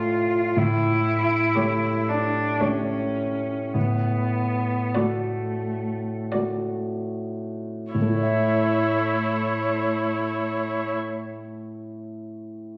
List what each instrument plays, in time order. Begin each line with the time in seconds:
Already playing: grand piano A3 F4 D5, cello F4, viola A4, violin D5
0.56 grand piano A2, cello E4
1.55 grand piano A3 G4 C#5, viola G4, violin C#5
2.09 cello D4
2.60 grand piano A3 G4 C#5, cello C#4, viola G4, violin C#5
3.74 grand piano A2, cello B3
4.95 grand piano A3 F#4 D5, cello A3, viola F#4, violin D5
6.32 grand piano A3 F#4 D5, viola F#4, violin D5
7.93 grand piano A2, cello A3, viola E4, violin C#5
8.02 grand piano A3
8.09 grand piano E4
8.16 grand piano C#5
8.22 grand piano E5